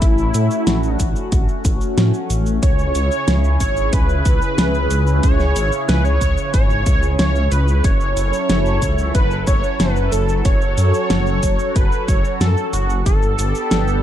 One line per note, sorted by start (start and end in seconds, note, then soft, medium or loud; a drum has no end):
0.00 0.31 A1 loud
0.00 2.58 A3 medium
0.00 13.02 C#4 medium
0.00 0.94 E4 loud
0.00 2.60 F#4 loud
0.00 kick loud
0.00 closed hi-hat loud
0.00 cabasa soft
0.18 cabasa soft
0.34 0.49 A2 loud
0.34 closed hi-hat medium
0.34 cabasa medium
0.51 cabasa soft
0.67 0.97 A1 loud
0.67 snare loud
0.67 closed hi-hat loud
0.67 cabasa soft
0.83 cabasa soft
0.94 1.61 D4 loud
1.00 1.14 A1 medium
1.00 kick medium
1.00 closed hi-hat medium
1.00 cabasa medium
1.16 cabasa soft
1.32 1.47 A1 loud
1.32 kick loud
1.32 closed hi-hat medium
1.32 cabasa soft
1.49 cabasa soft
1.65 1.80 A1 medium
1.65 kick loud
1.65 closed hi-hat medium
1.65 cabasa medium
1.81 cabasa soft
1.97 2.12 A2 medium
1.97 snare loud
1.97 closed hi-hat medium
1.97 cabasa soft
2.14 cabasa soft
2.30 2.60 A1 medium
2.30 closed hi-hat medium
2.30 cabasa medium
2.46 cabasa soft
2.62 2.92 C#2 loud
2.62 7.80 C#3 medium
2.62 7.80 E4 medium
2.62 7.80 G#4 medium
2.62 3.56 C#5 loud
2.62 kick loud
2.62 closed hi-hat loud
2.62 cabasa soft
2.79 cabasa soft
2.95 3.10 C#2 loud
2.95 closed hi-hat medium
2.95 cabasa medium
3.12 cabasa soft
3.28 3.57 C#2 loud
3.28 snare loud
3.28 closed hi-hat loud
3.28 cabasa soft
3.44 cabasa soft
3.60 3.90 G#1 medium
3.60 3.94 C#5 loud
3.60 kick medium
3.60 closed hi-hat medium
3.60 cabasa medium
3.77 cabasa soft
3.92 4.23 C#2 loud
3.92 5.22 B4 loud
3.92 kick loud
3.92 closed hi-hat loud
3.92 cabasa soft
4.09 cabasa soft
4.25 4.40 C#2 medium
4.25 kick loud
4.25 closed hi-hat medium
4.25 cabasa medium
4.42 cabasa soft
4.58 4.88 C#2 loud
4.58 snare loud
4.58 closed hi-hat loud
4.58 cabasa soft
4.74 cabasa soft
4.91 5.20 C#2 medium
4.91 closed hi-hat medium
4.91 cabasa medium
5.07 cabasa soft
5.23 5.53 C#2 loud
5.23 5.84 C#5 loud
5.23 kick loud
5.23 closed hi-hat medium
5.23 cabasa soft
5.40 snare soft
5.40 cabasa soft
5.56 5.71 G#1 loud
5.56 closed hi-hat medium
5.56 cabasa medium
5.72 cabasa soft
5.88 6.18 C#2 loud
5.88 6.04 B4 loud
5.88 snare loud
5.88 closed hi-hat medium
5.88 cabasa soft
6.05 6.50 C#5 loud
6.05 cabasa soft
6.21 6.36 C#2 medium
6.21 kick medium
6.21 closed hi-hat medium
6.21 cabasa medium
6.38 cabasa soft
6.54 6.84 G#1 medium
6.54 7.15 C#5 loud
6.54 kick loud
6.54 closed hi-hat medium
6.54 cabasa soft
6.70 cabasa soft
6.86 7.16 C#2 medium
6.86 kick loud
6.86 closed hi-hat medium
6.86 cabasa medium
7.03 cabasa soft
7.19 7.49 C#2 loud
7.19 7.53 C#5 loud
7.19 snare loud
7.19 closed hi-hat medium
7.19 cabasa soft
7.36 cabasa soft
7.51 7.81 C#2 loud
7.51 7.86 B4 loud
7.51 closed hi-hat medium
7.51 cabasa medium
7.68 cabasa soft
7.84 8.14 F#1 loud
7.84 13.02 F#3 medium
7.84 10.42 E4 medium
7.84 13.02 A4 medium
7.84 9.14 C#5 loud
7.84 kick loud
7.84 closed hi-hat medium
7.84 cabasa soft
8.01 cabasa soft
8.17 8.32 F#1 loud
8.17 closed hi-hat medium
8.17 cabasa medium
8.33 cabasa soft
8.49 8.79 F#1 loud
8.49 snare loud
8.49 closed hi-hat medium
8.49 cabasa soft
8.66 cabasa soft
8.82 9.12 C#2 medium
8.82 kick medium
8.82 closed hi-hat medium
8.82 cabasa medium
8.98 cabasa soft
9.14 9.44 F#1 loud
9.14 9.45 B4 loud
9.14 kick loud
9.14 closed hi-hat medium
9.14 cabasa soft
9.31 cabasa soft
9.47 9.62 F#1 medium
9.47 9.81 C#5 loud
9.47 kick loud
9.47 closed hi-hat medium
9.47 cabasa medium
9.64 cabasa soft
9.79 10.09 F#1 loud
9.79 10.13 B4 loud
9.79 snare loud
9.79 closed hi-hat medium
9.79 cabasa soft
9.96 cabasa soft
10.12 10.42 F#1 medium
10.12 10.44 A4 loud
10.12 closed hi-hat medium
10.12 cabasa medium
10.29 cabasa soft
10.45 10.75 F#1 loud
10.45 13.03 F#4 medium
10.45 11.77 C#5 loud
10.45 kick loud
10.45 closed hi-hat medium
10.45 cabasa soft
10.61 cabasa soft
10.78 10.92 F#2 medium
10.78 closed hi-hat medium
10.78 cabasa medium
10.94 cabasa soft
11.10 11.40 F#1 loud
11.10 snare loud
11.10 closed hi-hat medium
11.10 cabasa soft
11.27 cabasa soft
11.43 11.58 F#1 loud
11.43 kick medium
11.43 closed hi-hat medium
11.43 cabasa medium
11.59 cabasa soft
11.76 11.90 F#1 loud
11.76 12.09 B4 loud
11.76 kick loud
11.76 closed hi-hat medium
11.76 cabasa soft
11.92 cabasa soft
12.08 12.23 F#1 medium
12.08 12.40 C#5 loud
12.08 kick loud
12.08 closed hi-hat medium
12.08 cabasa medium
12.25 cabasa soft
12.40 12.55 F#2 loud
12.40 12.71 A4 loud
12.40 snare loud
12.40 closed hi-hat medium
12.40 cabasa soft
12.57 cabasa soft
12.73 13.03 F#1 medium
12.73 13.04 F#4 medium
12.73 closed hi-hat medium
12.73 cabasa medium
12.90 cabasa soft
13.06 13.36 G1 loud
13.06 14.03 B3 medium
13.06 14.03 D4 medium
13.06 14.03 G4 medium
13.06 14.03 A4 loud
13.06 kick loud
13.06 closed hi-hat medium
13.06 cabasa soft
13.22 cabasa soft
13.38 13.53 G1 loud
13.38 closed hi-hat medium
13.38 cabasa medium
13.55 cabasa soft
13.71 14.01 G1 loud
13.71 snare loud
13.71 closed hi-hat medium
13.71 cabasa soft
13.88 cabasa soft